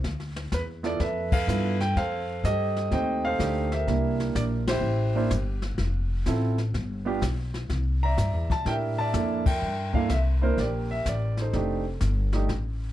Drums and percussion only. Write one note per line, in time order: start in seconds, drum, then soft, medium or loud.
0.04 brush sweep soft
0.04 kick soft
0.04 snare soft
0.20 snare soft
0.36 snare soft
0.52 kick soft
0.52 snare soft
0.52 hi-hat pedal medium
0.84 snare soft
1.00 brush sweep soft
1.00 kick soft
1.00 snare soft
1.32 kick medium
1.32 ride medium
1.49 hi-hat pedal medium
1.80 snare soft
1.96 brush sweep soft
1.96 kick soft
1.96 snare soft
2.44 kick soft
2.44 snare medium
2.44 hi-hat pedal soft
2.76 snare soft
2.91 brush sweep soft
2.91 kick soft
2.91 snare soft
3.39 kick soft
3.39 snare medium
3.39 hi-hat pedal soft
3.72 snare soft
3.87 brush sweep soft
3.87 kick soft
3.87 snare soft
4.20 snare soft
4.35 kick soft
4.35 snare medium
4.35 hi-hat pedal soft
4.68 snare medium
4.68 ride medium
4.83 brush sweep medium
5.30 kick soft
5.30 snare medium
5.30 hi-hat pedal medium
5.62 snare soft
5.78 brush sweep soft
5.78 kick soft
5.78 snare soft
6.26 kick soft
6.26 snare soft
6.26 hi-hat pedal soft
6.58 snare soft
6.74 brush sweep medium
6.74 kick soft
6.74 snare soft
7.22 kick soft
7.22 snare medium
7.22 hi-hat pedal medium
7.54 snare soft
7.69 brush sweep soft
7.69 kick soft
7.69 snare soft
8.18 kick soft
8.18 snare soft
8.18 hi-hat pedal soft
8.50 kick medium
8.50 snare soft
8.66 brush sweep soft
8.66 kick soft
8.66 snare soft
9.14 kick soft
9.14 snare medium
9.14 hi-hat pedal soft
9.46 kick medium
9.46 ride medium
9.62 brush sweep soft
9.94 kick medium
10.09 kick soft
10.09 snare medium
10.09 hi-hat pedal soft
10.58 brush sweep soft
10.58 kick soft
10.58 snare soft
11.06 kick soft
11.06 snare medium
11.06 hi-hat pedal medium
11.37 snare soft
11.53 brush sweep medium
11.53 kick soft
11.53 snare soft
12.01 kick soft
12.01 snare soft
12.01 hi-hat pedal soft
12.33 snare soft
12.49 brush sweep soft
12.49 kick soft
12.49 snare soft